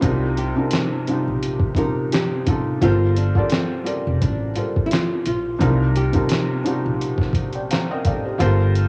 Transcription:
Already playing: F4
0.01 C2 C3 G3 D4 D#4 F4 A#4, kick, closed hi-hat
0.37 G4, closed hi-hat
0.56 C3 G3 D4 D#4 F4 A#4
0.71 snare, closed hi-hat
1.07 C3 G3 D4 D#4 F4 G4, closed hi-hat
1.28 A#1
1.43 closed hi-hat
1.60 kick
1.75 C3 G3 D4 D#4 F4 G4 A#4, kick, closed hi-hat
2.12 G4, snare, closed hi-hat
2.46 A1 C3 G3 D4 D#4 F4 A4, kick, closed hi-hat
2.82 G1 G3 F4 A4 A#4 C5, kick, closed hi-hat
3.17 D4, closed hi-hat
3.35 G3 F4 A4 A#4 D5, kick
3.50 C4, snare, closed hi-hat
3.84 G3 F4 A4 A#4 D5, closed hi-hat
4.07 F1
4.22 A1 D4, kick, closed hi-hat
4.55 G3 F4 A4 A#4 C5, closed hi-hat
4.76 kick
4.86 E4
4.91 F4, snare, closed hi-hat
5.26 A#1 F4, closed hi-hat
5.59 C2 C3 G3 D4 D#4 F4 A#4, kick, closed hi-hat
5.96 G4, closed hi-hat
6.12 C3 G3 D4 D#4 F4 A#4, kick, closed hi-hat
6.29 snare, closed hi-hat
6.64 C3 G3 D4 D#4 F4 F#4, closed hi-hat
6.73 G4
6.86 A#1
7.01 closed hi-hat
7.18 kick, snare
7.33 kick, closed hi-hat
7.53 D5 G5, closed hi-hat
7.71 C5 F5 A#5, snare, closed hi-hat
7.91 A#4 D#5 G5
8.05 A1 A4 D5 F5, kick, closed hi-hat
8.25 G4 C5
8.38 G1 G3 F4 A4 A#4 C5, kick, closed hi-hat
8.75 closed hi-hat

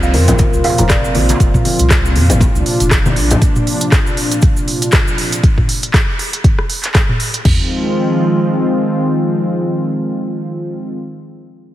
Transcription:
Already playing: C2 A#2 C3 F3 C4 F4
0.03 F5, cabasa
0.14 F2 A#4, open hi-hat, high conga
0.28 F1 A#4, closed hi-hat, djembe tone, low conga, cabasa
0.38 A#4, kick, closed hi-hat, high conga, cabasa
0.53 C2, cabasa
0.64 F5, open hi-hat, djembe tone
0.78 F1 A#5, closed hi-hat, low conga, cabasa
0.90 D5, kick, cross-stick, clap, closed hi-hat, cabasa
1.05 cabasa
1.15 A#1 F4, open hi-hat, high conga
1.29 closed hi-hat, djembe slap, high conga, cabasa
1.40 F1, kick, closed hi-hat, cabasa
1.54 kick, mid tom, cabasa
1.65 open hi-hat, high conga
1.79 C2, closed hi-hat, cabasa
1.90 kick, cross-stick, clap, closed hi-hat, cabasa
2.05 cabasa
2.16 F2, open hi-hat, high conga
2.30 F1, closed hi-hat, low conga, cabasa
2.40 D4, kick, closed hi-hat, high conga, cabasa
2.55 C2, cabasa
2.66 open hi-hat
2.80 F1, closed hi-hat, cabasa
2.91 kick, cross-stick, clap, closed hi-hat, cabasa
3.05 mid tom, high conga, cabasa
3.16 A#1, open hi-hat
3.31 closed hi-hat, low conga, cabasa
3.42 kick, closed hi-hat, cabasa
3.56 mid tom, cabasa
3.67 open hi-hat
3.81 closed hi-hat, cabasa
3.92 kick, cross-stick, clap, closed hi-hat, cabasa
4.07 cabasa
4.17 open hi-hat
4.31 closed hi-hat, cabasa
4.42 kick, closed hi-hat, cabasa
4.57 cabasa
4.68 open hi-hat
4.82 closed hi-hat, cabasa
4.92 kick, cross-stick, clap, closed hi-hat, cabasa
5.08 cabasa
5.18 open hi-hat
5.32 closed hi-hat, cabasa
5.43 kick, closed hi-hat
5.58 kick, mid tom
5.69 open hi-hat
5.83 closed hi-hat
5.94 kick, cross-stick, clap, closed hi-hat
6.19 open hi-hat
6.33 closed hi-hat
6.44 kick, closed hi-hat
6.59 cross-stick
6.70 open hi-hat
6.84 clap, closed hi-hat
6.95 kick, cross-stick, clap, closed hi-hat
7.09 mid tom
7.20 open hi-hat
7.34 closed hi-hat
7.45 D#3 F3 G#3 C4 F4, kick, floor tom, crash

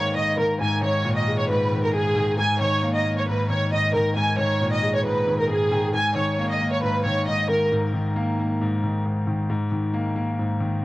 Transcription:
Already playing: G#2 D#3 A#3 C#5
0.16 G#2 D#5
0.38 D#3 A#4
0.61 G#2 G#5
0.83 D#3 C#5
1.05 A#2
1.16 D#5
1.28 G#3
1.38 C#5
1.49 G#2 B4
1.72 D#3
1.83 A#4
1.94 G#2 G#4
2.16 D#3
2.38 G#2 G#5
2.61 D#3 C#5
2.83 A#3
2.94 D#5
3.05 A#3
3.16 C#5
3.28 G#2 B4
3.49 D#3 C#5
3.72 G#2 D#5
3.94 D#3 A#4
4.16 G#2 G#5
4.38 D#3 C#5
4.61 A#2
4.72 D#5
4.83 G#3
4.94 C#5
5.05 G#2 B4
5.27 D#3
5.39 A#4
5.49 G#2 G#4
5.71 D#3
5.94 G#2 G#5
6.16 D#3 C#5
6.39 A#3
6.50 D#5
6.61 A#3
6.72 C#5
6.83 G#2 B4
7.05 D#3 C#5
7.27 G#2 D#5
7.49 D#3 A#4
7.72 G#2
7.94 D#3
8.16 A#3
8.39 A#3
8.61 G#2
8.84 D#3
9.05 G#2
9.27 D#3
9.50 G#2
9.72 D#3
9.94 A#3
10.16 A#3
10.39 G#2
10.61 D#3

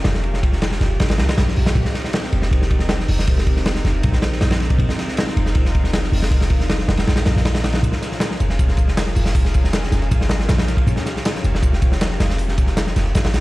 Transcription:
Already playing: C#4 F4 G4 A#4
0.04 F1, snare, ride
0.14 snare
0.24 ride
0.34 snare
0.43 kick, ride
0.53 snare
0.62 snare, ride
0.71 snare
0.81 F1, snare, ride
1.00 G#1, snare, ride
1.09 snare, ride
1.18 C#2, snare, ride
1.29 snare, ride
1.38 A#1, snare, ride
1.48 snare
1.57 A#1, open hi-hat
1.66 snare, ride
1.75 A#1 C4 D#4 A#4, kick, ride
1.85 snare
1.94 snare, ride
2.04 snare
2.13 snare, ride
2.23 snare
2.32 F1, ride
2.42 snare
2.51 kick, ride
2.62 snare
2.71 kick, ride
2.79 snare
2.89 snare, ride
3.00 snare
3.08 F1, open hi-hat
3.19 snare
3.27 kick, ride
3.38 snare
3.47 kick, ride
3.56 snare
3.66 snare, ride
3.75 snare
3.85 F1, snare, ride
4.03 A#1, kick, ride
4.12 snare
4.22 snare, ride
4.32 snare
4.41 A#1, snare, ride
4.51 snare, ride
4.60 snare, ride
4.70 kick, ride
4.79 A#1 F4, kick, ride
4.89 snare
4.98 snare, ride
5.08 snare
5.17 snare, ride
5.27 snare
5.37 F1, ride
5.46 snare
5.55 kick, ride
5.65 snare
5.75 kick, ride
5.84 snare
5.93 snare, ride
6.03 snare
6.12 F1, open hi-hat
6.22 snare
6.31 kick, ride
6.41 snare
6.50 kick, ride
6.60 snare
6.69 snare, ride
6.79 snare
6.88 F1, snare, ride
6.97 snare, ride
7.07 A#1, snare, ride
7.16 snare, ride
7.25 A#1, snare, ride
7.36 A#1, snare
7.45 snare, ride
7.55 snare, ride
7.64 snare, ride
7.73 snare, ride
7.83 A#1 C#4 G#4, kick, ride, tambourine
7.92 snare
8.02 snare, ride, tambourine
8.12 snare
8.20 snare, ride, tambourine
8.31 snare
8.40 F1, ride, tambourine
8.50 snare
8.59 kick, ride, tambourine
8.68 snare
8.77 kick, ride, tambourine
8.88 snare
8.97 snare, ride, tambourine
9.06 snare
9.15 F1, open hi-hat, tambourine
9.26 snare
9.35 kick, open hi-hat, ride
9.45 snare
9.54 kick, ride, tambourine
9.64 snare
9.73 snare, ride, tambourine
9.83 snare
9.92 F1, snare, ride, tambourine
10.02 snare
10.11 G#1, kick, ride, tambourine
10.21 snare
10.29 snare, ride, tambourine
10.40 snare
10.49 A#1, snare, ride, tambourine
10.58 snare, ride
10.68 snare, ride, tambourine
10.77 kick, ride
10.87 A#1 G4, kick, ride, tambourine
10.96 snare
11.06 snare, ride, tambourine
11.16 snare
11.25 snare, ride, tambourine
11.35 snare
11.44 F1, ride, tambourine
11.55 snare
11.63 kick, ride, tambourine
11.73 snare
11.82 kick, ride, tambourine
11.92 snare
12.01 snare, ride, tambourine
12.10 snare
12.20 F1, snare, ride, tambourine
12.30 snare
12.38 open hi-hat, ride
12.48 snare
12.58 kick, ride, tambourine
12.67 snare
12.77 snare, ride, tambourine
12.87 snare
12.96 F1, snare, ride, tambourine
13.06 snare
13.15 G#1, snare, ride, tambourine
13.24 snare, ride
13.34 C#2, snare, ride, tambourine

